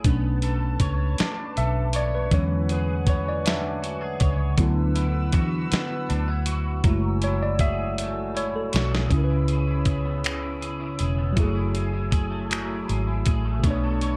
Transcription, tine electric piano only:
0.06 1.15 A3 soft
0.06 1.15 C#4 medium
0.06 1.15 D4 soft
1.58 1.92 E5 loud
1.96 2.13 D5 medium
2.15 2.33 B4 medium
2.33 2.82 D3 medium
2.33 2.82 F#3 soft
2.33 2.83 G#3 soft
2.33 2.83 C#4 medium
2.33 2.68 C#5 medium
2.72 3.09 B4 medium
3.10 3.26 C#5 medium
3.28 3.45 D5 medium
3.47 4.55 E5 medium
4.59 6.81 F#3 medium
4.59 6.81 B3 medium
4.59 6.81 E4 medium
6.85 7.94 G#3 medium
6.85 7.94 A3 medium
6.85 7.95 E4 medium
7.24 7.42 C#5 medium
7.43 7.51 D5 loud
7.61 8.32 E5 loud
8.37 8.55 C#5 medium
8.56 8.72 A4 medium
9.07 11.31 C#3 medium
9.07 11.33 C#4 medium
9.14 11.35 E4 medium
9.14 9.21 A#4 medium
9.24 11.40 B4 medium
11.33 13.57 F#3 medium
11.33 13.59 E4 medium
11.40 13.63 A3 medium
11.40 13.61 G#4 medium
13.60 14.17 B2 medium
13.64 14.17 A3 medium
13.64 14.17 D4 medium
13.71 14.17 C#5 medium

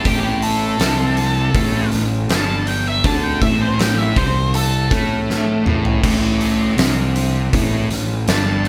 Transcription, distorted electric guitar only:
0.06 0.80 A2 loud
0.81 1.54 C3 loud
1.55 1.91 A2 loud
1.92 2.23 A2 medium
2.31 3.04 G2 loud
3.04 3.41 D3 loud
3.42 4.17 A2 medium
4.17 4.91 C3 loud
4.91 5.65 A3 loud
5.66 6.02 A2 medium
6.03 6.77 A2 medium
6.78 7.52 C3 loud
7.53 7.90 A2 medium
7.91 8.21 A2 medium
8.28 8.68 G2 loud

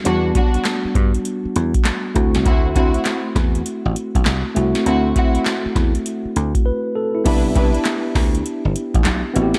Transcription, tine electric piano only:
0.04 2.11 G3 medium
0.04 2.11 B3 medium
0.04 2.12 D4 medium
0.04 2.12 F#4 medium
2.15 4.51 A3 medium
2.15 4.51 C4 medium
2.15 4.52 E4 medium
2.15 4.52 F#4 medium
4.55 6.91 A3 medium
4.55 6.92 C4 medium
4.55 6.62 E4 medium
4.55 6.62 F#4 medium
6.66 6.94 B4 medium
6.95 7.14 A4 medium
7.15 7.25 E4 medium
7.24 9.31 B3 medium
7.24 9.31 D4 medium
7.24 9.32 E4 medium
7.24 9.32 G4 medium
9.34 9.59 B3 medium
9.34 9.59 C4 medium
9.34 9.59 E4 medium
9.34 9.44 F#4 medium
9.43 9.59 G4 medium

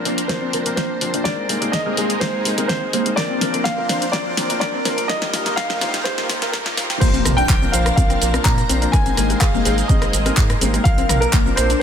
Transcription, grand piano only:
0.00 0.25 D5 medium
0.28 0.73 C5 medium
0.76 1.21 C5 medium
1.24 1.74 D5 medium
1.72 2.22 D#5 loud
2.20 2.65 C5 medium
2.68 3.18 C5 loud
3.16 3.61 D5 loud
3.64 4.14 F5 loud
4.12 4.58 D5 loud
4.60 5.10 D5 loud
5.08 5.53 D#5 loud
5.56 6.06 F5 loud
6.04 6.49 C5 medium
6.52 6.75 A#4 medium
7.00 7.35 C5 medium
7.37 7.74 G5 loud
7.72 7.95 F5 medium
7.96 8.46 F5 loud
8.44 8.94 A#5 loud
8.92 9.42 G#5 loud
9.40 9.90 F5 loud
9.88 10.33 D#5 medium
10.84 11.22 F5 loud
11.20 11.54 A#4 loud
11.56 11.78 C5 medium

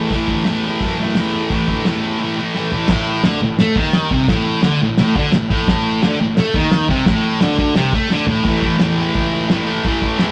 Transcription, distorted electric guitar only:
0.00 0.12 A2 medium
0.00 0.14 E3 medium
0.00 0.16 A3 medium
0.12 0.46 A2 medium
0.12 0.34 E3 loud
0.12 0.29 A3 loud
0.29 0.50 A3 medium
0.34 0.48 E3 medium
0.46 0.81 A2 medium
0.46 0.70 E3 loud
0.46 0.65 A3 loud
0.66 0.86 A3 medium
0.70 0.84 E3 medium
0.82 1.04 A2 medium
0.82 1.01 E3 medium
0.86 0.98 A3 medium
0.99 1.17 E3 medium
0.99 1.18 A3 medium
1.04 1.15 A2 medium
1.15 1.50 A2 medium
1.15 1.36 E3 medium
1.15 1.32 A3 medium
1.33 1.51 E3 medium
1.33 1.53 A3 medium
1.50 1.85 A2 loud
1.50 1.72 E3 medium
1.54 1.67 A3 loud
1.68 1.89 A3 medium
1.73 1.87 E3 medium
1.86 2.18 A2 medium
1.86 2.05 E3 medium
1.90 2.00 A3 medium
2.01 2.23 A3 medium
2.06 2.21 E3 medium
2.19 2.40 A2 medium
2.19 2.38 E3 medium
2.24 2.35 A3 medium
2.36 2.56 E3 medium
2.36 2.58 A3 medium
2.42 2.54 A2 medium
2.55 2.89 A2 medium
2.55 2.75 E3 medium
2.60 2.71 A3 medium
2.72 2.88 A3 medium
2.76 2.91 E3 medium
2.90 3.24 A2 loud
3.26 3.42 D3 medium
3.42 3.56 A2 medium
3.60 3.76 A3 loud
3.76 4.10 D#3 loud
4.12 4.28 C3 loud
4.29 4.62 A2 loud
4.63 4.80 D3 loud
4.82 4.95 A2 medium
4.99 5.16 A2 loud
5.17 5.33 D3 loud
5.34 5.47 A2 medium
5.50 5.67 A2 loud
5.69 6.02 A2 loud
6.03 6.19 D3 loud
6.21 6.34 A2 medium
6.38 6.54 A3 loud
6.55 6.89 D#3 loud
6.89 7.06 C3 loud
7.07 7.41 A2 loud
7.41 7.57 D3 medium
7.58 7.75 D3 loud
7.76 7.92 C3 loud
7.94 8.10 A3 loud
8.11 8.27 D3 loud
8.27 8.43 A2 loud
8.44 8.77 A2 loud
8.44 8.66 E3 medium
8.44 8.61 A3 loud
8.62 8.82 A3 medium
8.66 8.80 E3 medium
8.78 9.48 A2 medium
8.78 9.01 E3 loud
8.82 8.97 A3 loud
8.97 9.53 A3 medium
9.02 9.52 E3 medium
9.49 9.84 A2 medium
9.49 9.71 E3 medium
9.53 9.66 A3 medium
9.67 9.88 A3 medium
9.71 9.85 E3 medium
9.84 10.18 A2 medium
9.84 10.06 E3 loud
9.84 10.01 A3 loud
10.02 10.22 A3 medium
10.07 10.20 E3 medium
10.18 10.32 A2 medium
10.18 10.32 E3 medium
10.18 10.32 A3 loud

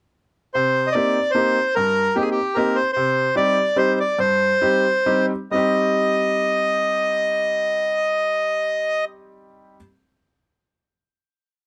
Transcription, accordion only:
0.54 0.89 C5 medium
0.87 0.95 D#5 medium
0.92 1.31 D5 medium
1.31 1.75 C5 medium
1.75 2.17 A#4 medium
2.16 2.23 G4 medium
2.21 2.30 G#4 medium
2.31 2.57 G4 medium
2.55 2.77 A#4 medium
2.76 2.91 C5 medium
2.93 3.35 C5 medium
3.36 3.78 D5 medium
3.78 3.99 C5 medium
4.00 4.20 D5 medium
4.19 5.26 C5 medium
5.52 9.05 D#5 medium

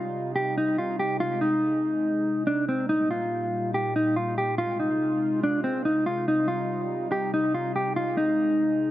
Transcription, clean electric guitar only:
0.00 0.32 F4 medium
0.36 0.54 G4 medium
0.58 0.76 D#4 loud
0.78 0.97 F4 medium
0.99 1.18 G4 medium
1.20 1.39 F4 loud
1.41 2.43 D#4 medium
2.47 2.66 D4 medium
2.69 2.87 C4 medium
2.89 3.08 D#4 loud
3.11 3.70 F4 medium
3.74 3.93 G4 medium
3.96 4.14 D#4 medium
4.16 4.35 F4 medium
4.38 4.56 G4 medium
4.58 4.77 F4 loud
4.80 5.39 D#4 medium
5.43 5.62 D4 medium
5.64 5.83 C4 medium
5.85 6.04 D#4 medium
6.06 6.25 F4 medium
6.28 6.46 D#4 loud
6.48 7.08 F4 medium
7.12 7.30 G4 medium
7.34 7.52 D#4 loud
7.54 7.73 F4 medium
7.76 7.94 G4 medium
7.96 8.15 F4 loud
8.17 8.91 D#4 medium

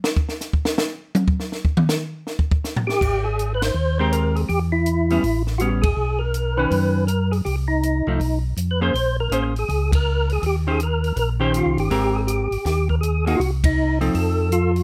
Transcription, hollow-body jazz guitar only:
4.00 4.47 G#3 medium
4.00 4.47 C4 medium
4.00 4.47 G4 medium
4.00 4.47 A#4 medium
5.11 5.22 G3 medium
5.11 5.22 B3 medium
5.11 5.23 C#4 medium
5.61 5.82 G3 medium
5.61 5.82 B3 medium
5.61 5.82 C#4 medium
6.57 7.05 D#3 medium
6.57 7.06 C#4 medium
8.07 8.19 F3 medium
8.07 8.19 A3 medium
8.07 8.19 D#4 medium
8.81 8.93 A#3 medium
8.81 8.93 C#4 medium
8.81 8.93 G#4 medium
8.81 8.93 C5 medium
9.32 9.53 A#3 soft
9.32 9.53 C#4 medium
9.32 9.53 G#4 medium
9.32 9.53 C5 medium
10.67 10.78 D#3 medium
10.67 10.79 C#4 medium
10.67 10.79 G4 medium
10.67 10.79 C5 medium
11.40 11.88 D#3 medium
11.40 11.88 C#4 medium
11.40 11.88 G4 medium
11.40 11.89 C5 medium
11.90 12.47 G#3 medium
11.90 12.47 C4 medium
11.90 12.47 G4 medium
11.90 12.47 A#4 medium
13.27 13.38 A#3 medium
13.27 13.39 D#4 medium
13.27 13.39 F#4 medium
14.01 14.48 F3 medium
14.01 14.49 C4 medium
14.01 14.49 D#4 medium
14.01 14.49 A4 medium

